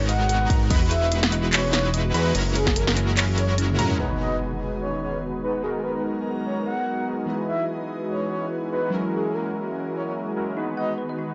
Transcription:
Already playing: analog synth bass G#1, analog synth pad B2 F#4 A#4, supersaw synth G#3 B3 D#4 F#4 A#4
0.09 synth arpeggio sound D#5, soft synth lead F#5, closed hi-hat
0.20 synth arpeggio sound G#4
0.29 synth arpeggio sound A#4, closed hi-hat
0.41 synth arpeggio sound B4
0.50 analog synth bass G#1, supersaw synth G#3 B3 D#4 F#4 A#4, synth arpeggio sound D#4, synth pluck A#5, kick, closed hi-hat
0.70 analog synth bass E1, analog synth pad G#3, supersaw synth G#3 D#4 E4 F#4 B4, synth arpeggio sound D#5, synth pluck B5, kick, closed hi-hat, crash
0.82 synth arpeggio sound F#4
0.91 synth arpeggio sound G#4, soft synth lead E5, closed hi-hat
1.02 synth arpeggio sound B4
1.11 synth arpeggio sound D#4, closed hi-hat
1.23 snare
1.32 synth arpeggio sound D#5, closed hi-hat
1.43 synth arpeggio sound F#4
1.53 synth arpeggio sound G#4, soft synth lead C#5, clap, closed hi-hat, crash
1.64 synth arpeggio sound B4
1.73 synth arpeggio sound D#4, soft synth lead C#5, snare, closed hi-hat
1.94 synth arpeggio sound D#5, closed hi-hat
2.05 synth arpeggio sound F#4
2.14 analog synth bass E2, supersaw synth G#3 D#4 E4 F#4 B4, synth arpeggio sound G#4, soft synth lead B4, synth pluck B5, closed hi-hat
2.25 synth arpeggio sound B4
2.35 analog synth bass F#1, analog synth pad E3 A#3 G#4, supersaw synth G#3 C#4 E4 F#4 A#4, synth arpeggio sound C#4, synth pluck A#5, closed hi-hat, crash
2.55 soft synth lead G#4, synth arpeggio sound C#5, closed hi-hat
2.67 synth arpeggio sound F#4, kick, snare
2.76 synth arpeggio sound G#4, soft synth lead A#4, closed hi-hat
2.87 synth arpeggio sound A#4, snare
2.97 synth arpeggio sound C#4, closed hi-hat
3.17 synth arpeggio sound C#5, clap, closed hi-hat, crash
3.29 synth arpeggio sound F#4
3.38 synth arpeggio sound G#4, soft synth lead C#5, closed hi-hat
3.49 synth arpeggio sound A#4, soft synth lead C#5
3.58 synth arpeggio sound C#4, closed hi-hat
3.69 high tom
3.79 analog synth bass F#2, supersaw synth G#3 C#4 E4 F#4 A#4, synth arpeggio sound C#5, synth pluck A#5, closed hi-hat, mid tom
3.90 synth arpeggio sound F#4, mid tom
3.97 synth keys B2 B3 D#4 G#4 C#5, analog synth pad D#3 B3 G#4, supersaw synth G#3 B3 D#4 F#4 B4, impact
4.20 soft synth lead D#5
4.81 soft synth lead C#5
5.02 soft synth lead C#5
5.42 supersaw synth G#3 B3 D#4 F#4 B4, soft synth lead B4
5.62 analog synth pad F#3 G#4 A#5, synth keys G#3 B3 D#4 F#4 A#4, supersaw synth G#3 B3 D#4 F#4 A#4, soft synth lead G#4
5.75 soft synth lead G#4
5.84 soft synth lead B4
5.95 soft synth lead B4
6.45 soft synth lead C#5
6.66 soft synth lead F#5
7.07 supersaw synth G#3 B3 D#4 F#4 A#4
7.26 synth keys E3 B3 F#4 G#4 D#5, analog synth pad E3 F#4 D#5, supersaw synth G#3 D#4 E4 F#4 B4
7.48 soft synth lead E5
8.10 soft synth lead C#5
8.31 soft synth lead C#5
8.72 supersaw synth G#3 D#4 E4 F#4 B4, soft synth lead B4
8.90 synth keys F#3 C#4 E4 G#4, supersaw synth G#3 C#4 E4 F#4 A#4, analog synth pad A#3
8.94 synth keys A#4
9.13 soft synth lead G#4
9.34 soft synth lead A#4
9.95 soft synth lead C#5
10.07 soft synth lead C#5
10.36 supersaw synth G#3 C#4 E4 F#4 A#4
10.57 analog synth pad D#3 B3, supersaw synth G#3 B3 D#4 F#4 B4, synth arpeggio sound D#4
10.77 soft synth lead D#5, synth arpeggio sound F#5
10.89 synth arpeggio sound G#4
10.98 synth arpeggio sound B4
11.09 synth arpeggio sound D#5
11.19 synth arpeggio sound D#4

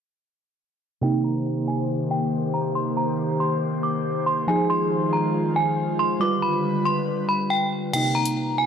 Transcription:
1.01 synth keys C3 A#3 D#4, analog synth pad D#3 A#3 G4 C5, synth bell G5
1.24 synth bell A#5
1.68 synth bell G#5
2.11 synth bell G5
2.54 synth bell A#5
2.75 synth bell C6
2.97 synth bell A#5
3.40 synth bell C6
3.83 synth bell D6
4.26 synth bell C6
4.47 analog synth pad D#3 G#3 F4, synth keys F3 D#4 G#4, synth bell G#5
4.70 synth bell C6
5.13 synth bell A#5
5.56 synth bell G#5
5.99 synth bell C6
6.20 analog synth pad D3 G3 B4, synth keys G3 F4 B4, synth bell D6
6.42 synth bell B5
6.85 synth bell C6
7.29 synth bell B5
7.50 synth bell G5
7.93 synth keys C3 A#3 D#4, synth bell G5, closed hi-hat, crash
8.15 synth bell A#5
8.25 closed hi-hat
8.58 synth bell G#5

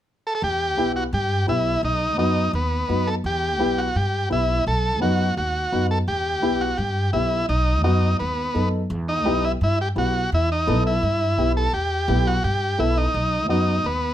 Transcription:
0.27 transistor combo organ A4
0.35 transistor combo organ A4
0.42 upright bass E2, transistor combo organ G4
0.77 upright bass B1, upright piano B3 E4 G4
0.96 transistor combo organ F#4
1.13 upright bass G2, transistor combo organ G4
1.47 upright bass B1, upright piano B3 E4 G4, transistor combo organ E4
1.83 upright bass B1, transistor combo organ D#4
2.17 upright bass F#2, upright piano B3 D#4 F#4, transistor combo organ D#4
2.53 upright bass D#2, transistor combo organ B3
2.88 upright bass F#2, upright piano B3 D#4 F#4
3.07 transistor combo organ A4
3.24 upright bass E2, transistor combo organ G4
3.59 upright bass B1, upright piano B3 E4 G4
3.78 transistor combo organ F#4
3.95 upright bass G2, transistor combo organ G4
4.30 upright bass B1, upright piano B3 E4 G4, transistor combo organ E4
4.67 upright bass B1, transistor combo organ A4
5.00 upright bass F#2, upright piano B3 D#4 F#4, transistor combo organ F#4
5.37 upright bass D#2, transistor combo organ F#4
5.72 upright bass F#2, upright piano B3 D#4 F#4
5.91 transistor combo organ A4
6.07 upright bass E2, transistor combo organ G4
6.42 upright bass B1, upright piano B3 E4 G4
6.61 transistor combo organ F#4
6.77 upright bass G2, transistor combo organ G4
7.13 upright bass B1, upright piano B3 E4 G4, transistor combo organ E4
7.49 upright bass B1, transistor combo organ D#4
7.83 upright bass F#2, upright piano B3 D#4 F#4, transistor combo organ D#4
8.19 upright bass D#2, transistor combo organ B3
8.54 upright bass F#2, upright piano B3 D#4 A4
8.90 upright bass E2
9.08 transistor combo organ D#4
9.25 upright bass B1, upright piano B3 E4 G4
9.45 transistor combo organ E4
9.61 upright bass G2, transistor combo organ E4
9.81 transistor combo organ G4
9.95 upright bass B1, upright piano B3 E4 G4, transistor combo organ F#4
10.32 upright bass E2, transistor combo organ E4
10.52 transistor combo organ D#4
10.67 upright bass B1, upright piano B3 E4 A4
10.87 transistor combo organ E4
11.03 upright bass G2
11.38 upright bass B1, upright piano B3 E4 G4
11.57 transistor combo organ A4
11.73 upright bass E2, transistor combo organ G4
12.08 upright bass B1, upright piano B3 E4 G4
12.27 transistor combo organ F#4
12.44 upright bass G2, transistor combo organ G4
12.78 upright bass B1, upright piano B3 E4 A4, transistor combo organ E4
12.98 transistor combo organ D#4
13.14 upright bass B1
13.48 upright bass F#2, upright piano B3 D#4 F#4, transistor combo organ D#4
13.84 upright bass D#2, transistor combo organ B3

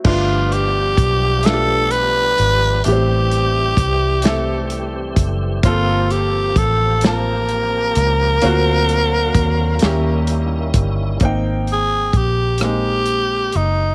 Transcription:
0.04 fingered electric bass G1, tonewheel organ F3 G3 B3 D4 G4, grand piano A3 B3 D4 F4, tenor saxophone F4, kick, crash
0.52 tenor saxophone G4, closed hi-hat
0.97 fingered electric bass B1, kick, closed hi-hat
1.43 grand piano A3 B3 D4, tenor saxophone A4, snare, closed hi-hat
1.47 grand piano F4
1.54 grand piano G4
1.91 tenor saxophone B4, closed hi-hat
2.38 fingered electric bass G#1, closed hi-hat
2.84 fingered electric bass A1, tonewheel organ E3 C4, grand piano A3 B3 E4, tenor saxophone G4, closed hi-hat
2.88 grand piano G4
2.92 grand piano C4
3.31 closed hi-hat
3.77 fingered electric bass C2, kick, closed hi-hat
4.22 grand piano A3 C4, snare, closed hi-hat
4.26 grand piano E4 A4
4.70 closed hi-hat
5.16 fingered electric bass F#1, kick, closed hi-hat
5.63 fingered electric bass G1, tonewheel organ F3 A#3, grand piano A#3 C4 F4 A4, tenor saxophone F4, kick, closed hi-hat
6.10 tenor saxophone G4, closed hi-hat
6.56 fingered electric bass A1, tenor saxophone A4, kick, closed hi-hat
7.01 grand piano A#3 C4, snare, closed hi-hat
7.06 grand piano F4 A5, tenor saxophone A#4
7.49 closed hi-hat
7.95 fingered electric bass C#2, closed hi-hat
8.42 fingered electric bass D2, tonewheel organ D3 F#3 C4 F5, grand piano A#3 C4 F4, closed hi-hat
8.46 grand piano F#4
8.89 closed hi-hat
9.34 fingered electric bass D#2, kick, closed hi-hat
9.79 tonewheel organ D#3 G3 C#4 E4, grand piano A#3 C#4, snare, closed hi-hat
9.83 fingered electric bass D#2, grand piano E4 G4
10.27 closed hi-hat
10.74 fingered electric bass G1, kick, closed hi-hat
11.20 fingered electric bass G#1, grand piano A#3 C4 D#4, kick, closed hi-hat
11.25 grand piano G5
11.67 closed hi-hat
11.72 tenor saxophone G#4
12.13 fingered electric bass A#1, kick, closed hi-hat
12.18 tenor saxophone G4
12.58 grand piano A#3 C4, cross-stick, closed hi-hat
12.63 grand piano G#3 D#4, tenor saxophone G4
13.06 closed hi-hat
13.52 fingered electric bass F#1, tenor saxophone D#4, closed hi-hat

